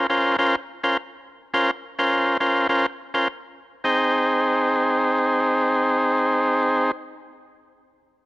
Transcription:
0.10 C#4 F4 A#4 C5
0.39 C#4 F4 A#4 C5
0.84 C#4 F4 A#4 C5
1.54 C#4 F4 A#4 C5
1.99 C#4 F4 A#4 C5
2.40 C#4 F4 A#4 C5
2.69 C#4 F4 A#4 C5
3.14 C#4 F4 A#4 C5
3.84 C4 D#4 G#4 C5

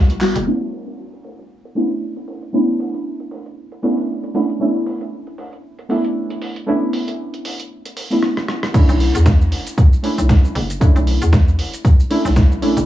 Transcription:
Already playing: B1 G3 B3 E4 F#4
0.10 closed hi-hat
0.20 A1 G3 B3 E4 F#4, clap, open hi-hat
0.36 F#1, closed hi-hat
0.46 A3 B3 C#4 D4 E4, crash
0.73 open hi-hat
0.87 closed hi-hat
1.13 closed hi-hat
1.24 open hi-hat
1.39 closed hi-hat
1.65 closed hi-hat
1.75 A3 B3 C#4 D4 E4, open hi-hat
1.91 closed hi-hat
2.17 closed hi-hat
2.28 open hi-hat
2.42 closed hi-hat
2.53 A3 B3 C#4 D4 E4
2.80 open hi-hat
2.94 closed hi-hat
3.20 closed hi-hat
3.31 open hi-hat
3.46 closed hi-hat
3.72 closed hi-hat
3.82 A3 B3 C#4 D4 E4, open hi-hat
3.98 open hi-hat
4.24 closed hi-hat
4.34 A3 B3 C#4 D4 E4, open hi-hat
4.49 closed hi-hat
4.60 A3 B3 C#4 D4 E4
4.86 open hi-hat
5.01 closed hi-hat
5.27 closed hi-hat
5.38 open hi-hat
5.53 closed hi-hat
5.79 closed hi-hat
5.89 A3 B3 C#4 D4 E4, open hi-hat
6.04 closed hi-hat
6.30 closed hi-hat
6.42 open hi-hat
6.56 closed hi-hat
6.66 A3 B3 C#4 D4 E4
6.93 open hi-hat
7.08 closed hi-hat
7.34 closed hi-hat
7.45 open hi-hat
7.60 closed hi-hat
7.86 closed hi-hat
7.97 open hi-hat
8.10 A3 B3 C#4 D4 E4, open hi-hat
8.23 cross-stick
8.37 cross-stick
8.48 cross-stick
8.63 cross-stick
8.73 A3 C#4 D4 E4, kick, closed hi-hat, crash, shaker
8.89 B1, closed hi-hat, shaker
9.00 open hi-hat
9.15 E2, closed hi-hat, shaker
9.26 kick, snare, closed hi-hat, shaker
9.41 shaker
9.52 F#1, open hi-hat
9.67 closed hi-hat, shaker
9.78 kick, closed hi-hat, shaker
9.93 shaker
10.03 A3 C#4 D4 E4, open hi-hat
10.18 B1, closed hi-hat, shaker
10.29 kick, snare, closed hi-hat, shaker
10.45 shaker
10.55 F#1, open hi-hat
10.70 closed hi-hat, shaker
10.80 A3 C#4 D4 E4, kick, closed hi-hat, shaker
10.96 B1, closed hi-hat, shaker
11.07 open hi-hat
11.22 E2, closed hi-hat, shaker
11.33 kick, snare, closed hi-hat, shaker
11.48 shaker
11.59 F#1, open hi-hat
11.73 closed hi-hat, shaker
11.85 kick, closed hi-hat, shaker
12.00 shaker
12.10 A3 C#4 D4 E4, open hi-hat
12.25 B1, snare, open hi-hat, shaker
12.36 kick, snare, closed hi-hat, shaker
12.52 shaker
12.62 A1 A3 C#4 D4 E4, open hi-hat
12.77 F#1, closed hi-hat, shaker

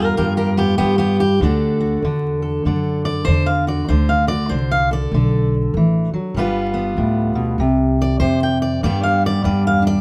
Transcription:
Already playing: E2 G2 G3 B3 F4 A#4
0.17 F2 G2 G4 A#4
0.37 G4 A#4
0.57 B3 G4
0.78 G2 B3 G4
0.98 B3 G4
1.20 G4
1.41 D2 D3 D4 F#4 A4 D5
1.80 F#4
2.02 E2 D3
2.42 A4
2.65 F#2 D3 D5
3.05 D5
3.25 E2 D3 C5
3.46 F5
3.67 F#4 D5
3.88 D2 D3 C5
4.09 F5
4.27 F#4 D5
4.49 C2 D3 C5
4.71 F5
4.91 A4 D5
5.12 B1 D3
5.74 A1 E3
6.11 F#3, muted upright bass stroke
6.35 G1 G2 G3 B3
6.39 F4 B4
6.74 B3
6.97 D2 A2
7.35 B2
7.58 C2 C3
8.02 D5
8.20 F2 C3 C5
8.43 G5
8.62 D5
8.83 G2 G3 B3 D4 D5
9.03 F5
9.26 D5
9.44 E2 G2 D5
9.67 F5
9.82 D4
9.87 D5

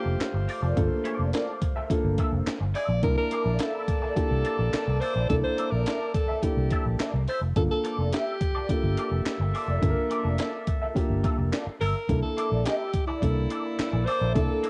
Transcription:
Already playing: A3 A#3 D4 F4 G4 A4 C5
0.06 F1, muted clean electric guitar stroke
0.21 muted clean electric guitar stroke, snare, clap, closed hi-hat
0.34 G1, muted clean electric guitar stroke
0.48 A#3 F4 A4 D5, open hi-hat
0.62 F1 A#3 F4 A4 D5
0.76 G1 A#3 D4 F4 A4, kick, closed hi-hat
1.04 A#3 F4 A4 D5, closed hi-hat
1.19 F1
1.33 A#3 F4 A4 D5, snare, clap, closed hi-hat
1.62 muted clean electric guitar stroke, kick, closed hi-hat
1.76 A#3 F4 A4 E5
1.90 A#3 D4 F4 A4, muted clean electric guitar stroke, kick, closed hi-hat
2.04 G1
2.18 A#3 F4 A4 E5, kick, closed hi-hat
2.32 F1, muted clean electric guitar stroke
2.46 muted fingered electric bass stroke, muted clean electric guitar stroke, snare, clap, closed hi-hat
2.60 G1, muted clean electric guitar stroke
2.74 A#3 F4 A4 D5 E5, open hi-hat
2.88 A#1, muted clean electric guitar stroke
3.02 C2 A#3 D4 E4 A#4 D5 A5, kick, closed hi-hat
3.17 A#4
3.31 A#3 E4 A4 D5, closed hi-hat
3.45 A#1
3.59 A#3 E4 A4 E5, snare, clap, closed hi-hat
3.88 muted clean electric guitar stroke, kick, closed hi-hat
4.02 A#3 E4 A4 D5
4.16 A#3 D4 E4 G4 A4, kick, closed hi-hat
4.31 C2
4.44 A#3 E4 A4 D5, closed hi-hat
4.59 A#1, muted clean electric guitar stroke
4.73 muted clean electric guitar stroke, snare, clap, closed hi-hat
4.87 C2, muted clean electric guitar stroke
5.01 A#3 E4 A4 C5 D5, open hi-hat
5.15 A#1 A#3 E4 A4 D5
5.29 C2 A#3 D4 E4 A4, kick, closed hi-hat
5.44 C5
5.58 A#3 E4 A4 D5, closed hi-hat
5.71 A#1 A#4
5.86 A#3 E4 A4 D5, snare, clap, closed hi-hat
6.14 A4, muted clean electric guitar stroke, kick, closed hi-hat
6.28 A#3 E4 A4 E5
6.43 A#3 D4 E4 G4 A4, muted clean electric guitar stroke, kick, closed hi-hat
6.57 C2
6.71 A#3 E4 A4 E5, kick, closed hi-hat
6.85 A#1, muted clean electric guitar stroke
6.99 A#3 E4 A4 D5, muted fingered electric bass stroke, snare, clap, closed hi-hat
7.14 C2, muted clean electric guitar stroke
7.28 A#3 E4 A4 C5 E5, open hi-hat
7.41 F1, muted clean electric guitar stroke
7.56 G1 A#3 D4 F4 A4, kick, closed hi-hat
7.71 A4
7.84 A#3 F4 A4 D5, closed hi-hat
7.98 F1
8.12 A#3 F4 G4 A4 E5, snare, clap, closed hi-hat
8.41 muted clean electric guitar stroke, kick, closed hi-hat
8.55 A#3 F4 A4 D5
8.69 A#3 D4 F4 G4 A4 E5, muted clean electric guitar stroke, kick, closed hi-hat
8.84 G1
8.97 A#3 F4 A4 D5, closed hi-hat
9.11 F1, muted clean electric guitar stroke
9.26 muted fingered electric bass stroke, muted clean electric guitar stroke, snare, clap, closed hi-hat
9.40 G1, muted clean electric guitar stroke
9.54 A#3 F4 A4 D5, open hi-hat
9.68 F1 A#3 F4 A4 D5
9.81 G1 A#3 D4 F4 A4, kick, closed hi-hat
9.89 A#4
10.10 A#3 F4 A4 D5, closed hi-hat
10.25 F1
10.38 A#3 F4 A4 D5, snare, clap, closed hi-hat
10.67 muted clean electric guitar stroke, kick, closed hi-hat
10.82 A#3 F4 A4 E5
10.95 A#3 D4 F4 G4, muted clean electric guitar stroke, kick, closed hi-hat
11.10 G1
11.23 A#3 F4 A4 E5, kick, closed hi-hat
11.38 F1, muted clean electric guitar stroke
11.52 A#3 F4 A4 D5, snare, clap, closed hi-hat
11.66 muted clean electric guitar stroke, muted fingered electric bass stroke
11.80 G1 A#3 F4 A4 A#4 E5, open hi-hat
11.95 muted clean electric guitar stroke
12.08 C2 A#3 D4 E4 A4, kick, closed hi-hat
12.22 A4
12.37 A#3 E4 A4 D5, closed hi-hat
12.52 A#1
12.65 A#3 E4 G4 A4 E5, snare, clap, closed hi-hat
12.93 muted clean electric guitar stroke, kick, closed hi-hat
13.07 A#3 E4 A4 D5
13.21 C2 A#3 D4 E4 A4 D5, muted clean electric guitar stroke, kick, closed hi-hat
13.50 A#3 E4 A4 D5, closed hi-hat
13.64 muted clean electric guitar stroke
13.78 muted clean electric guitar stroke, muted fingered electric bass stroke, snare, clap, closed hi-hat
13.92 A#1, muted clean electric guitar stroke
14.06 A#3 E4 A4 C5 D5, open hi-hat
14.21 A#1 A#3 E4 A4 D5
14.34 C2 A#3 D4 E4 A4, kick, closed hi-hat
14.63 A#3 E4 A4 D5, closed hi-hat

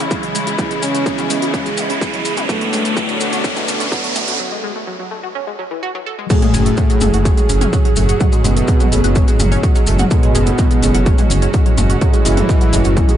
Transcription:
Already playing: C#3 E3 G#3 C#4 E4, riser
0.11 F#3, kick, closed hi-hat, maracas
0.23 F#3, closed hi-hat
0.35 G#3, open hi-hat, maracas
0.47 F#4, closed hi-hat, maracas
0.58 C#3 E3 F#3 G#3 B3, kick, closed hi-hat, mid tom, maracas
0.71 G#3, closed hi-hat, maracas
0.82 C#3 G#3 C#4, open hi-hat, maracas
0.95 G#3, closed hi-hat, maracas
1.06 F#3, kick, closed hi-hat, maracas
1.18 F#3, closed hi-hat, mid tom, maracas
1.30 C#3 E3 G#3, open hi-hat, maracas
1.42 F#4, closed hi-hat, maracas
1.54 C#4, kick, closed hi-hat, maracas
1.66 G#3, closed hi-hat, maracas
1.77 C#3, open hi-hat, mid tom, maracas
1.90 C#4, open hi-hat, maracas
2.01 F#3, kick, closed hi-hat, maracas
2.14 F#3, closed hi-hat
2.25 G#3, open hi-hat, maracas
2.37 F#4, closed hi-hat, mid tom, maracas
2.49 A2 B2 D3 F#3 A3 B3 C#4 D4, kick, closed hi-hat, maracas
2.61 G#3, closed hi-hat
2.73 G#3, open hi-hat, maracas
2.85 A3, closed hi-hat, maracas
2.97 F#3, kick, closed hi-hat, mid tom, maracas
3.08 F#3, closed hi-hat, maracas
3.20 D3 A3 B3, open hi-hat, maracas
3.32 F#4, closed hi-hat, maracas
3.44 C#4, kick, closed hi-hat, maracas
3.56 G#3, closed hi-hat, mid tom, maracas
3.68 C#3, open hi-hat, maracas
3.80 C#4, closed hi-hat, maracas
3.92 F#3, kick, closed hi-hat, maracas
4.04 F#3, closed hi-hat
4.15 A3, open hi-hat, mid tom, maracas
4.28 F#4, closed hi-hat, maracas
4.40 F#3
4.52 G#3
4.64 G#3
4.76 A3
4.87 F#3
4.99 F#3
5.11 A3
5.23 F#4
5.35 C#4
5.47 G#3
5.59 F#3
5.71 E3
5.83 F#4
5.95 F#3
6.06 A4
6.19 G#3
6.30 A2 F#3 A3 C#4 F#4 G#4, kick, closed hi-hat, crash, maracas
6.42 G#3 G#4, closed hi-hat, mid tom
6.54 F#1 G#3 G#4, open hi-hat, maracas
6.66 A3 A4, closed hi-hat, maracas
6.77 F#3 F#4, kick, closed hi-hat, maracas
6.90 F#3 F#4, closed hi-hat, maracas
7.01 F#1 A2 F#3 A3 G#4 A4, open hi-hat, mid tom, maracas
7.13 F#1 F#4 F#5, closed hi-hat, maracas
7.25 C#4 C#5, kick, closed hi-hat, maracas
7.37 G#3 G#4, closed hi-hat, maracas
7.49 F#1 C#3 C#4, open hi-hat, maracas
7.61 C#4 C#5, closed hi-hat, mid tom, maracas
7.73 F#3 F#4, kick, closed hi-hat, maracas
7.85 F#3 F#4, closed hi-hat
7.96 F#1 A3 A4, open hi-hat, maracas
8.09 F#4 F#5, closed hi-hat, maracas
8.20 A2 F#3 G#3 F#4, kick, closed hi-hat, mid tom, maracas
8.32 G#3 G#4, closed hi-hat, maracas
8.44 F#1 B2 G#3 B3 G#4, open hi-hat, maracas
8.56 A3 A4, closed hi-hat, maracas
8.68 F#3 F#4, kick, closed hi-hat, maracas
8.80 F#3 F#4, closed hi-hat, mid tom, maracas
8.92 F#1 A2 F#3 G#3 A3 A4, open hi-hat, maracas
9.04 F#1 F#4 F#5, closed hi-hat, maracas
9.15 C#4 C#5, kick, closed hi-hat, maracas
9.28 G#3 G#4, closed hi-hat, maracas
9.40 F#1 C#3 C#4, open hi-hat, mid tom, maracas
9.52 C#4 C#5, open hi-hat, maracas
9.63 F#3 F#4, kick, closed hi-hat, maracas
9.75 F#3 F#4, closed hi-hat, maracas
9.87 F#1 A3 A4, open hi-hat, maracas
9.98 F#4 F#5, closed hi-hat, mid tom, maracas
10.11 A2 B2 F#3 G#3 B3 F#4, kick, closed hi-hat, maracas
10.23 G#3 G#4, closed hi-hat
10.35 F#1 G#3 G#4, open hi-hat, maracas
10.46 A3 A4, closed hi-hat, maracas
10.58 F#3 F#4, kick, closed hi-hat, mid tom, maracas
10.71 F#3 F#4, closed hi-hat, maracas
10.82 F#1 A2 F#3 G#3 A3 A4, open hi-hat, maracas
10.94 F#1 F#4 F#5, closed hi-hat, maracas
11.06 C#4 C#5, kick, closed hi-hat, maracas
11.18 G#3 G#4, closed hi-hat, mid tom, maracas
11.30 F#1 C#3 C#4, open hi-hat, maracas
11.42 C#4 C#5, closed hi-hat, maracas
11.54 F#3 F#4, kick, closed hi-hat, maracas
11.66 F#3 F#4, closed hi-hat
11.78 F#1 A3 A4, open hi-hat, mid tom, maracas
11.90 F#4 F#5, closed hi-hat, maracas
12.01 A2 F#3 G#3 F#4, kick, closed hi-hat, maracas
12.13 G#3 G#4, closed hi-hat, maracas
12.25 F#1 E3 G#3 E4 G#4, open hi-hat, maracas
12.37 A3 A4, closed hi-hat, mid tom, maracas
12.49 F#3 F#4, kick, closed hi-hat, maracas
12.61 F#3 F#4, closed hi-hat, maracas
12.73 F#1 A2 F#3 G#3 A3 A4, open hi-hat, maracas
12.84 F#1 F#4 F#5, closed hi-hat, maracas
12.97 C#4 C#5, kick, closed hi-hat, mid tom, maracas
13.09 G#3 G#4, closed hi-hat, maracas

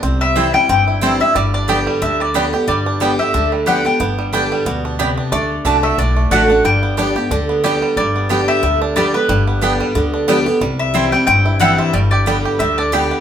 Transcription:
Already playing: G3
0.03 C2 C3 C4
0.21 G3 E5
0.36 E3 G3 C4 E4 C5 G5
0.54 G3 C4 E4 G5
0.69 G1 G2 C4 G5
0.87 E4
1.01 E3 G3 C4 E4 C5 G5
1.20 C4 E4 E5
1.35 G1 G2 G3 D5
1.54 D4 D5
1.68 D3 G3 B3 G4 D5 G5
1.87 G3
2.02 D2 D3 D4 E5
2.20 G3 D5
2.34 D3 G3 B3 G4 D5 G5
2.53 B3 G4
2.68 G1 G2 G3 D5
2.86 D4
3.00 D3 G3 B3 G4 D5 G5
3.19 B3 G4 E5
3.34 D2 D3 D4
3.52 G3
3.66 D3 G3 B3 G4 D5 F#5 G5
3.85 B3 D4 G4 G5
4.00 G1 G2 B3
4.19 G3
4.33 D3 G3 B3 D4 G4 D5 G5
4.52 G3
4.66 D2 B2 B3
4.85 D4
4.99 C3 B3 G4 D5 G5
5.17 D4
5.32 D2 D3 A3 D5
5.65 C2 D3 A3 D4 F#4 D5 A5
5.83 A3 E5
5.98 B1 A2 D4 D5
6.16 A3
6.31 A1 D3 A3 D4 F#4 D5 F#5 A5
6.50 D4 F#4
6.64 G1 G2 G3 G5
6.83 B3
6.97 D3 G3 B3 D4 G4 D5 G5
7.16 B3 G4
7.30 D2 D3 D4
7.49 B3
7.64 D3 G3 B3 G4 D5 G5
7.82 G3
7.96 G1 G2 G3 D5
8.16 B3
8.29 D3 G3 B3 D4 G4 D5 G5
8.48 G4 E5
8.63 D2 D3 G3
8.82 D4
8.96 D3 G3 B3 G4 D5 G5
9.14 B3 G4 B4
9.29 G1 G2 G3
9.47 B3
9.61 D3 G3 B3 D4 G4 D5 G5
9.80 G3
9.95 D2 D3 B3
10.14 D4
10.28 D3 G3 B3 G4 D5 G5
10.46 B3 G4
10.61 C2 C3 G3
10.79 E5
10.94 E3 G3 C4 E4 C5 G5
11.12 G3 C4 E4 G5
11.27 G1 G2 C4 G5
11.46 E4
11.60 E3 G3 C4 E4 C5 F#5 G5
11.78 C4 E5
11.93 G1 G2 G3 D5
12.11 G4 D5
12.26 D3 G3 B3 G4 D5 G5
12.45 G4
12.59 D2 D3 G3 E5
12.78 D4 D5
12.92 D3 G3 B3 G4 D5 G5
13.11 B3

